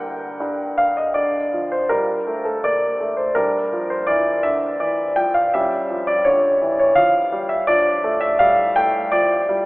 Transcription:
0.00 0.18 D3 medium
0.00 0.42 G3 medium
0.00 0.41 A#3 soft
0.00 0.41 D4 soft
0.00 0.42 A#4 medium
0.00 0.41 F#5 medium
0.00 0.40 G5 medium
0.40 0.93 G2 soft
0.78 0.97 F5 medium
0.97 1.16 D#5 medium
1.14 1.45 D3 soft
1.14 3.31 D4 soft
1.14 1.70 D5 medium
1.53 1.82 F3 soft
1.72 1.90 C5 medium
1.89 2.19 G3 soft
1.89 2.45 A#4 medium
2.27 2.56 A3 soft
2.45 2.63 A4 medium
2.64 2.93 A#3 soft
2.64 3.18 D5 medium
3.00 3.29 A3 soft
3.17 3.35 C5 soft
3.35 3.65 G3 soft
3.35 5.48 D4 soft
3.35 3.89 A#4 medium
3.73 4.01 F3 soft
3.90 4.08 C5 medium
4.07 4.36 E3 soft
4.07 4.43 D5 medium
4.43 4.73 D3 soft
4.43 4.80 E5 medium
4.80 5.10 E3 soft
4.80 5.16 D5 medium
5.16 5.45 F3 soft
5.16 5.34 G5 medium
5.34 5.52 F5 medium
5.54 5.82 G3 medium
5.54 7.65 C#4 soft
5.54 6.07 E5 medium
5.90 6.18 F3 soft
6.07 6.25 D5 medium
6.25 6.54 D3 medium
6.25 6.78 C#5 medium
6.61 6.90 E3 soft
6.79 6.97 C#5 medium
6.95 7.25 F3 soft
6.95 7.50 F5 medium
7.32 7.61 G3 soft
7.49 7.67 E5 medium
7.67 7.97 F3 soft
7.67 9.66 D4 soft
7.67 8.21 D5 medium
8.04 8.33 A3 medium
8.21 8.39 E5 medium
8.39 8.69 G3 medium
8.39 8.75 F5 medium
8.76 9.05 A3 soft
8.76 9.12 G5 medium
9.12 9.41 F3 soft
9.12 9.66 D5 medium
9.49 9.66 G3 soft

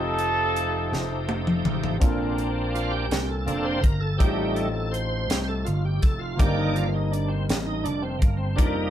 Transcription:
0.00 0.88 F1 medium
0.00 1.97 F3 medium
0.00 1.97 A3 medium
0.00 1.26 C4 medium
0.00 1.95 C4 medium
0.00 1.26 D#4 medium
0.00 1.96 D#4 soft
0.00 1.97 D#4 medium
0.00 1.97 F4 medium
0.00 1.97 G4 medium
0.00 1.98 G4 medium
0.00 1.25 A4 loud
0.00 1.99 A4 medium
0.19 closed hi-hat soft
0.56 closed hi-hat soft
0.92 1.61 F1 medium
0.92 snare medium
1.29 high tom medium
1.47 mid tom medium
1.65 1.98 A1 medium
1.65 mid tom medium
1.84 floor tom medium
1.98 3.07 A#1 medium
1.98 3.07 A#2 medium
1.98 3.06 A#3 soft
1.98 4.15 C4 medium
1.98 3.06 C4 soft
1.98 4.15 D4 medium
1.98 3.07 D4 medium
1.98 4.16 F4 medium
1.98 kick medium
1.98 closed hi-hat medium
2.04 4.17 A4 medium
2.04 4.18 A#4 medium
2.38 closed hi-hat soft
2.75 2.93 F4 medium
2.75 closed hi-hat soft
2.91 3.29 G4 medium
3.11 3.44 C2 medium
3.11 snare medium
3.11 closed hi-hat medium
3.28 3.45 A4 medium
3.46 3.81 F1 medium
3.46 3.79 A#3 soft
3.46 3.80 C4 soft
3.46 3.80 D4 soft
3.46 3.66 A4 medium
3.46 closed hi-hat soft
3.65 3.84 C5 medium
3.81 4.17 G1 medium
3.81 4.01 A#4 medium
3.81 kick medium
3.81 closed hi-hat medium
4.00 4.20 A4 medium
4.17 5.26 A1 medium
4.17 4.68 G3 medium
4.17 4.68 A3 soft
4.17 6.34 C4 medium
4.17 6.35 D#4 soft
4.17 4.68 D#4 medium
4.17 4.57 G4 medium
4.17 kick loud
4.17 closed hi-hat medium
4.21 5.26 A2 medium
4.21 6.36 F4 soft
4.21 6.37 G4 soft
4.21 4.29 G#4 soft
4.31 6.41 A4 medium
4.54 4.72 A4 medium
4.54 closed hi-hat soft
4.73 4.93 A4 medium
4.91 5.39 C5 medium
4.91 closed hi-hat soft
5.30 5.63 C2 medium
5.30 snare medium
5.30 closed hi-hat medium
5.43 5.48 C5 medium
5.48 5.67 A4 medium
5.65 6.00 G1 medium
5.65 5.84 F4 medium
5.65 closed hi-hat soft
5.85 6.03 G4 medium
6.02 6.36 F1 medium
6.02 6.21 A4 medium
6.02 kick medium
6.02 closed hi-hat medium
6.19 6.39 F4 medium
6.36 7.45 G1 loud
6.36 7.45 G2 medium
6.36 6.88 D#3 medium
6.36 8.53 A#3 medium
6.36 6.88 A#3 soft
6.36 8.54 C4 soft
6.36 6.46 D4 soft
6.36 6.58 G4 medium
6.36 kick loud
6.36 closed hi-hat medium
6.40 8.55 G4 soft
6.40 8.57 A#4 medium
6.40 6.88 D5 medium
6.46 8.57 D#4 medium
6.58 6.76 D#4 medium
6.76 6.94 F4 medium
6.76 closed hi-hat soft
6.94 7.13 D#4 medium
7.11 7.31 D4 medium
7.11 closed hi-hat soft
7.28 7.45 C4 medium
7.49 7.82 A1 medium
7.49 snare medium
7.49 closed hi-hat medium
7.66 7.85 D#4 medium
7.84 8.19 F1 medium
7.84 8.03 D4 medium
7.84 closed hi-hat soft
8.02 8.22 C4 medium
8.19 8.58 G1 medium
8.19 8.37 A#3 medium
8.19 kick medium
8.19 closed hi-hat medium
8.37 8.57 C4 medium
8.56 8.90 F1 medium
8.56 8.90 G3 soft
8.56 8.90 A#3 medium
8.56 8.90 A#3 soft
8.56 8.90 C4 soft
8.56 8.76 D4 medium
8.56 8.73 D#4 medium
8.56 8.90 D#4 medium
8.56 8.90 F4 soft
8.56 kick medium
8.56 closed hi-hat medium
8.60 8.66 A4 soft
8.67 8.90 A#4 medium
8.74 8.90 D#4 medium

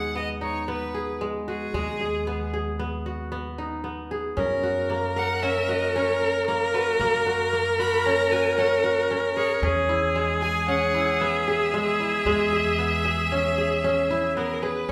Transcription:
0.00 1.70 D#2 medium
0.00 1.20 G#3 medium
0.00 0.15 B3 medium
0.00 0.41 D#4 medium
0.00 0.30 F#4 medium
0.00 0.94 G#4 medium
0.00 0.14 F#5 medium
0.15 0.68 B3 medium
0.15 0.28 D#5 medium
0.41 2.03 D#4 medium
0.41 0.67 C#5 medium
0.68 2.27 B3 medium
0.68 1.18 B4 medium
0.94 2.00 G#4 medium
1.21 1.73 G#3 medium
1.48 2.94 F#4 medium
1.48 2.50 G#4 medium
1.73 4.33 D#2 medium
1.73 4.08 G#3 medium
2.01 2.53 G#4 medium
2.27 2.79 B3 medium
2.54 3.90 G#4 medium
2.79 3.31 B3 medium
3.06 4.52 F#4 medium
3.32 3.83 B3 medium
3.58 5.21 D#4 medium
3.84 4.96 B3 medium
4.11 5.47 G#4 medium
4.37 6.96 F#2 medium
4.37 5.42 C#4 medium
4.37 9.64 A#4 loud
4.63 5.68 F#4 medium
4.90 6.48 A#3 medium
5.16 6.22 A#4 medium
5.16 5.44 F#5 medium
5.43 5.95 C#4 medium
5.43 5.71 E5 medium
5.69 6.74 F#4 medium
5.69 5.95 D#5 medium
5.95 7.69 C#4 medium
5.95 6.44 C#5 medium
6.22 7.49 A#4 medium
6.48 7.00 A#3 medium
6.74 7.26 F#4 medium
6.74 6.86 B4 medium
7.00 9.59 F#2 medium
7.00 7.53 A#3 medium
7.26 7.79 F#4 medium
7.53 9.46 A#3 medium
7.79 8.31 F#4 medium
7.79 8.05 B5 medium
8.04 8.58 C#4 medium
8.04 8.32 A#5 medium
8.31 8.84 F#4 medium
8.31 8.55 G#5 medium
8.56 9.10 C#4 medium
8.56 9.06 F#5 medium
8.84 10.30 F#4 medium
9.11 9.62 C#4 medium
9.36 10.42 G#4 medium
9.36 9.61 C#5 medium
9.62 12.21 E2 medium
9.62 10.68 C#4 medium
9.62 14.62 G#4 loud
9.89 10.94 E4 medium
10.15 11.73 G#3 medium
10.41 11.47 G#4 medium
10.41 10.66 G#5 medium
10.67 12.42 C#4 medium
10.67 11.22 F#5 medium
10.95 12.00 E4 medium
11.20 12.78 B3 medium
11.20 14.36 E5 medium
11.48 12.52 G#4 medium
11.74 12.25 G#3 medium
12.00 13.57 E4 medium
12.25 14.84 E2 medium
12.25 14.60 G#3 medium
12.53 13.05 G#4 medium
12.79 14.36 B3 medium
13.05 13.58 G#4 medium
13.32 13.84 C#4 medium
13.58 14.62 G#4 medium
13.84 14.88 C#4 medium
14.11 14.92 E4 medium
14.36 14.92 B3 medium
14.36 14.64 A#4 medium
14.62 14.92 G#4 medium
14.62 14.91 B4 medium
14.88 14.92 C#2 medium
14.88 14.92 C#4 medium

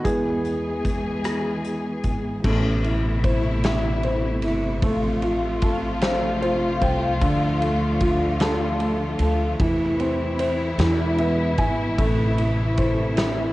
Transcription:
0.00 2.40 B3 medium
0.05 2.00 E2 medium
0.05 2.40 E3 soft
0.05 2.42 E3 medium
0.05 2.42 G#3 medium
0.05 2.40 G#3 soft
0.05 2.41 B3 soft
0.05 2.00 G#4 medium
0.05 2.42 G#4 medium
0.05 kick medium
0.05 closed hi-hat medium
0.45 closed hi-hat soft
0.85 kick medium
0.85 closed hi-hat medium
1.24 cross-stick medium
1.24 closed hi-hat medium
1.64 closed hi-hat soft
2.03 2.42 G#1 medium
2.03 kick medium
2.03 closed hi-hat soft
2.44 4.43 A1 medium
2.44 4.81 B2 medium
2.44 7.18 C3 medium
2.44 4.81 A3 medium
2.44 4.79 A3 medium
2.44 4.81 E4 medium
2.44 kick loud
2.44 crash medium
2.84 3.62 E4 soft
2.84 ride soft
3.24 4.03 C5 medium
3.24 kick medium
3.24 ride medium
3.64 4.43 E4 medium
3.64 snare medium
3.64 ride medium
4.03 4.81 C5 medium
4.03 ride soft
4.42 4.82 G1 medium
4.42 4.82 E4 soft
4.42 ride medium
4.82 6.78 A1 medium
4.82 9.56 F3 medium
4.82 10.76 A3 medium
4.82 7.18 A3 medium
4.82 9.56 F4 medium
4.82 kick loud
4.82 ride medium
5.22 6.40 F4 medium
5.22 ride soft
5.62 7.18 A4 medium
5.62 kick medium
5.62 ride medium
6.01 6.40 C5 medium
6.01 snare medium
6.01 ride medium
6.42 7.19 F4 medium
6.42 6.79 C5 medium
6.42 ride soft
6.81 7.19 C2 medium
6.81 7.20 C5 medium
6.81 7.19 G5 medium
6.81 kick medium
6.81 ride medium
7.21 9.16 D2 medium
7.21 9.56 D3 medium
7.21 9.58 D3 medium
7.21 kick medium
7.21 ride medium
7.61 8.79 A3 medium
7.61 ride soft
8.00 9.56 F4 medium
8.00 kick medium
8.00 ride medium
8.40 9.20 A4 medium
8.40 snare medium
8.40 ride medium
8.80 9.58 A3 medium
8.80 ride soft
9.19 9.57 D2 medium
9.19 9.60 A4 medium
9.19 ride soft
9.59 10.75 E2 medium
9.59 10.78 C3 medium
9.59 10.78 E3 medium
9.59 10.76 E3 medium
9.59 13.53 E4 medium
9.59 kick loud
9.59 ride medium
10.00 10.77 C4 medium
10.00 ride soft
10.39 10.78 C5 medium
10.39 ride medium
10.78 11.54 E2 loud
10.78 11.97 B2 medium
10.78 13.53 E3 medium
10.78 11.95 E3 medium
10.78 11.97 G#3 medium
10.78 snare medium
10.78 ride medium
11.18 11.96 B3 soft
11.18 11.56 E5 medium
11.18 ride soft
11.58 11.96 G#1 medium
11.58 11.97 E4 medium
11.58 11.96 G#5 medium
11.58 kick medium
11.58 ride soft
11.98 13.53 A1 loud
11.98 13.53 C3 medium
11.98 13.53 A3 medium
11.98 kick medium
11.98 ride medium
12.38 13.16 E4 soft
12.38 ride soft
12.77 13.53 C5 medium
12.77 kick medium
12.77 ride medium
13.17 13.53 E4 medium
13.17 snare medium
13.17 ride medium

